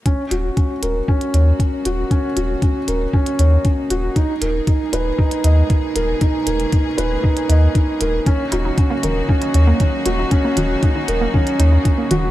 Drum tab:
HH |x-x-x-x--xx-x-x-|x-x-x-x--xx-x-x-|x-x-x-x--xx-x-x-|x-xxx-x--xx-x-x-|
BD |o---o---o---o---|o---o---o---o---|o---o---o---o---|o---o---o---o---|

HH |x-x-x-x--xx-x-x-|x-x-x-x--xx-x-x-|
BD |o---o---o---o---|o---o---o---o---|